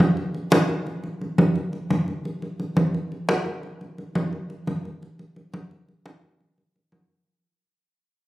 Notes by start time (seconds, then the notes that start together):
0.00 high conga
0.17 high conga
0.34 high conga
0.52 high conga
0.70 high conga
0.87 high conga
1.04 high conga
1.21 high conga
1.38 high conga
1.55 high conga
1.73 high conga
1.90 high conga
2.08 high conga
2.25 high conga
2.42 high conga
2.60 high conga
2.77 high conga
2.94 high conga
3.12 high conga
3.29 high conga
3.46 high conga
3.63 high conga
3.81 high conga
3.98 high conga
4.15 high conga
4.33 high conga
4.50 high conga
4.67 high conga
4.85 high conga
5.03 high conga
5.19 high conga
5.36 high conga
5.54 high conga
5.71 high conga
5.88 high conga
6.06 high conga
6.23 high conga
6.41 high conga
6.58 high conga
6.76 high conga
6.92 high conga